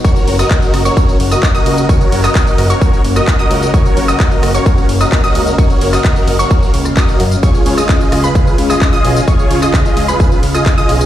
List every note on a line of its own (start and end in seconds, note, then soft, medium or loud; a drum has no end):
0.04 7.39 A#3 medium
0.04 11.06 C#4 medium
0.04 3.70 F#4 medium
0.04 0.36 F#4 medium
0.04 0.36 A#4 medium
0.04 0.36 C#5 medium
0.04 0.36 C#6 medium
0.04 kick loud
0.04 closed hi-hat medium
0.04 tambourine medium
0.16 closed hi-hat soft
0.16 tambourine soft
0.28 0.44 F#1 loud
0.28 open hi-hat loud
0.28 ride medium
0.39 0.82 F#4 medium
0.39 0.83 A#4 medium
0.39 0.83 D#5 medium
0.39 0.83 D#6 medium
0.39 cross-stick medium
0.39 closed hi-hat medium
0.39 tambourine medium
0.51 kick loud
0.51 clap loud
0.51 closed hi-hat medium
0.51 tambourine medium
0.62 closed hi-hat soft
0.62 tambourine soft
0.74 0.90 F#1 loud
0.74 cross-stick medium
0.74 open hi-hat loud
0.74 ride medium
0.85 1.17 F#4 medium
0.85 1.17 A#4 medium
0.85 1.17 C#5 medium
0.85 1.17 C#6 medium
0.85 closed hi-hat medium
0.85 tambourine medium
0.97 kick loud
0.97 closed hi-hat medium
0.97 tambourine medium
1.09 tambourine soft
1.20 1.36 F#1 medium
1.20 open hi-hat loud
1.20 ride medium
1.31 1.52 F#4 medium
1.31 1.52 A#4 medium
1.31 1.52 D#5 medium
1.31 1.52 D#6 medium
1.31 cross-stick medium
1.31 closed hi-hat medium
1.31 tambourine medium
1.43 kick loud
1.43 clap loud
1.43 closed hi-hat medium
1.43 tambourine medium
1.54 1.86 F#4 loud
1.54 1.86 A#4 medium
1.54 1.86 D#5 loud
1.54 1.86 D#6 loud
1.54 tambourine soft
1.66 1.82 C#2 medium
1.66 open hi-hat loud
1.66 ride medium
1.78 closed hi-hat medium
1.78 tambourine medium
1.89 2.21 F#4 medium
1.89 2.21 A#4 medium
1.89 2.21 C#5 medium
1.89 2.21 C#6 medium
1.89 kick loud
1.89 closed hi-hat medium
1.89 tambourine medium
2.01 closed hi-hat soft
2.01 tambourine soft
2.12 2.28 F#1 loud
2.12 open hi-hat loud
2.12 ride medium
2.24 2.67 F#4 medium
2.24 2.67 A#4 medium
2.24 2.67 D#5 medium
2.24 2.67 D#6 loud
2.24 cross-stick medium
2.24 clap soft
2.24 closed hi-hat medium
2.24 tambourine medium
2.35 kick loud
2.35 clap loud
2.35 closed hi-hat medium
2.35 tambourine medium
2.47 closed hi-hat soft
2.47 tambourine soft
2.58 2.74 F#1 loud
2.58 open hi-hat loud
2.58 ride medium
2.70 3.02 F#4 medium
2.70 3.02 A#4 medium
2.70 3.02 C#5 medium
2.70 3.02 C#6 medium
2.70 closed hi-hat medium
2.70 tambourine medium
2.81 kick loud
2.81 closed hi-hat medium
2.81 tambourine medium
2.93 tambourine soft
3.05 3.21 F#1 medium
3.05 open hi-hat loud
3.05 ride medium
3.16 3.36 F#4 medium
3.16 3.36 A#4 medium
3.16 3.36 D#5 medium
3.16 3.36 D#6 medium
3.16 cross-stick medium
3.16 tambourine medium
3.28 kick loud
3.28 clap loud
3.28 closed hi-hat medium
3.28 tambourine medium
3.39 3.71 F#4 medium
3.39 3.71 A#4 medium
3.39 3.71 D#5 loud
3.39 3.71 D#6 loud
3.39 tambourine soft
3.51 3.67 C#2 medium
3.51 open hi-hat loud
3.51 ride medium
3.62 closed hi-hat medium
3.62 tambourine medium
3.74 4.06 F#4 medium
3.74 4.06 A#4 medium
3.74 4.06 C#5 medium
3.74 11.06 F5 medium
3.74 4.06 C#6 medium
3.74 kick loud
3.74 closed hi-hat medium
3.74 tambourine medium
3.85 closed hi-hat soft
3.85 tambourine soft
3.97 4.13 F#1 loud
3.97 open hi-hat loud
3.97 ride medium
4.08 4.52 F#4 medium
4.08 4.52 A#4 medium
4.08 4.52 D#5 medium
4.08 4.52 D#6 medium
4.08 cross-stick medium
4.08 closed hi-hat medium
4.08 tambourine medium
4.20 kick loud
4.20 clap loud
4.20 closed hi-hat medium
4.20 tambourine medium
4.31 closed hi-hat soft
4.31 tambourine soft
4.43 4.59 F#1 loud
4.43 cross-stick medium
4.43 open hi-hat loud
4.43 ride medium
4.54 4.86 F#4 medium
4.54 4.86 A#4 medium
4.54 4.86 C#5 medium
4.54 4.86 C#6 medium
4.54 closed hi-hat medium
4.54 tambourine medium
4.66 kick loud
4.66 closed hi-hat medium
4.66 tambourine medium
4.78 tambourine soft
4.89 5.05 F#1 medium
4.89 open hi-hat loud
4.89 ride medium
5.01 5.21 F#4 medium
5.01 5.21 A#4 medium
5.01 5.21 D#5 medium
5.01 5.21 D#6 medium
5.01 cross-stick medium
5.01 closed hi-hat medium
5.01 tambourine medium
5.12 kick loud
5.12 clap loud
5.12 closed hi-hat medium
5.12 tambourine medium
5.24 5.56 F#4 loud
5.24 5.56 A#4 medium
5.24 5.56 D#5 loud
5.24 5.56 D#6 loud
5.24 tambourine soft
5.35 5.51 C#2 medium
5.35 open hi-hat loud
5.35 ride medium
5.47 closed hi-hat medium
5.47 tambourine medium
5.58 5.90 F#4 medium
5.58 5.90 A#4 medium
5.58 5.90 C#5 medium
5.58 5.90 C#6 medium
5.58 kick loud
5.58 closed hi-hat medium
5.58 tambourine medium
5.70 closed hi-hat soft
5.70 tambourine soft
5.81 5.98 F#1 loud
5.81 open hi-hat loud
5.81 ride medium
5.93 6.36 F#4 medium
5.93 6.36 A#4 medium
5.93 6.36 D#5 medium
5.93 6.36 D#6 medium
5.93 cross-stick medium
5.93 clap soft
5.93 closed hi-hat medium
5.93 tambourine medium
6.04 kick loud
6.04 clap loud
6.04 closed hi-hat medium
6.04 tambourine medium
6.16 closed hi-hat soft
6.16 tambourine soft
6.28 6.44 F#1 loud
6.28 open hi-hat loud
6.28 ride medium
6.39 6.71 F#4 medium
6.39 6.71 A#4 medium
6.39 6.71 C#5 medium
6.39 6.71 C#6 medium
6.39 closed hi-hat soft
6.39 tambourine medium
6.51 kick loud
6.51 closed hi-hat medium
6.51 tambourine medium
6.63 tambourine soft
6.74 6.90 C#2 medium
6.74 open hi-hat loud
6.74 ride medium
6.85 cross-stick medium
6.85 closed hi-hat medium
6.85 tambourine medium
6.97 7.24 F#4 medium
6.97 7.24 A#4 medium
6.97 7.24 D#5 loud
6.97 7.24 D#6 loud
6.97 kick loud
6.97 clap loud
6.97 closed hi-hat medium
6.97 tambourine medium
7.08 closed hi-hat soft
7.08 tambourine soft
7.20 7.36 F#2 loud
7.20 open hi-hat loud
7.20 ride medium
7.31 closed hi-hat soft
7.31 tambourine medium
7.43 11.06 C#3 medium
7.43 7.75 F4 medium
7.43 11.06 G#4 medium
7.43 7.75 G#4 medium
7.43 7.75 C#5 medium
7.43 7.75 C#6 medium
7.43 kick loud
7.43 closed hi-hat medium
7.43 tambourine medium
7.54 closed hi-hat soft
7.54 tambourine soft
7.66 7.82 C#2 loud
7.66 open hi-hat loud
7.66 ride medium
7.77 8.21 F4 medium
7.77 8.21 G#4 medium
7.77 8.21 D#5 loud
7.77 8.21 D#6 loud
7.77 cross-stick medium
7.77 closed hi-hat medium
7.77 tambourine medium
7.89 kick loud
7.89 clap loud
7.89 closed hi-hat medium
7.89 tambourine medium
8.01 closed hi-hat soft
8.01 tambourine soft
8.12 8.28 C#2 loud
8.12 cross-stick medium
8.12 open hi-hat loud
8.12 ride medium
8.24 8.56 F4 medium
8.24 8.56 G#4 medium
8.24 8.56 B4 medium
8.24 8.56 B5 medium
8.24 closed hi-hat medium
8.24 tambourine medium
8.35 kick loud
8.35 closed hi-hat medium
8.35 tambourine medium
8.47 tambourine soft
8.58 8.74 C#2 loud
8.58 open hi-hat loud
8.58 ride medium
8.70 8.90 F4 medium
8.70 8.90 G#4 medium
8.70 8.90 D#5 medium
8.70 8.90 D#6 medium
8.70 cross-stick medium
8.70 closed hi-hat medium
8.70 tambourine medium
8.81 kick loud
8.81 clap loud
8.81 closed hi-hat medium
8.81 tambourine medium
8.93 9.25 F4 loud
8.93 9.25 G#4 medium
8.93 9.25 D#5 loud
8.93 9.25 D#6 loud
8.93 tambourine soft
9.04 9.21 B1 medium
9.04 open hi-hat loud
9.04 ride medium
9.16 closed hi-hat soft
9.16 tambourine medium
9.28 9.59 F4 medium
9.28 9.60 G#4 medium
9.28 9.59 C#5 medium
9.28 9.59 C#6 medium
9.28 kick loud
9.28 closed hi-hat medium
9.28 tambourine medium
9.39 closed hi-hat soft
9.39 tambourine soft
9.51 9.67 C#2 loud
9.51 open hi-hat loud
9.51 ride medium
9.62 10.06 F4 medium
9.62 10.06 G#4 medium
9.62 10.06 D#5 medium
9.62 10.06 D#6 loud
9.62 cross-stick medium
9.62 clap soft
9.62 closed hi-hat medium
9.62 tambourine medium
9.74 kick loud
9.74 clap loud
9.74 closed hi-hat medium
9.74 tambourine medium
9.85 closed hi-hat soft
9.85 tambourine soft
9.97 10.13 C#2 loud
9.97 open hi-hat loud
9.97 ride medium
10.08 10.40 F4 medium
10.08 10.40 G#4 medium
10.08 10.40 B4 medium
10.08 10.40 B5 medium
10.08 closed hi-hat medium
10.08 tambourine medium
10.20 kick loud
10.20 closed hi-hat medium
10.20 tambourine medium
10.32 tambourine soft
10.43 10.59 C#2 medium
10.43 open hi-hat loud
10.43 ride medium
10.54 10.75 F4 medium
10.54 10.75 G#4 medium
10.54 10.75 D#5 medium
10.54 10.75 D#6 medium
10.54 cross-stick medium
10.54 tambourine medium
10.66 kick loud
10.66 clap loud
10.66 closed hi-hat medium
10.66 tambourine medium
10.78 11.06 F4 loud
10.78 11.06 G#4 medium
10.78 11.06 D#5 loud
10.78 11.06 D#6 loud
10.78 tambourine soft
10.89 11.05 B1 medium
10.89 open hi-hat loud
10.89 ride medium
11.01 closed hi-hat medium
11.01 tambourine medium